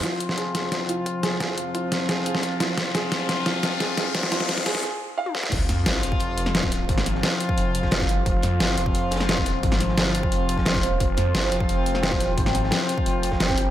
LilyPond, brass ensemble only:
\new Staff \with { instrumentName = "Brass ensemble" } { \time 4/4 \key f \minor \tempo 4 = 175 <f c' f'>1 | <f c' f'>1 | <f c' f'>1 | <f c' f'>2 r2 |
<f c' f'>1 | <f c' f'>1 | <f c' f'>1 | <f c' f'>1 |
<f c' f'>1 | <f c' f'>1 | }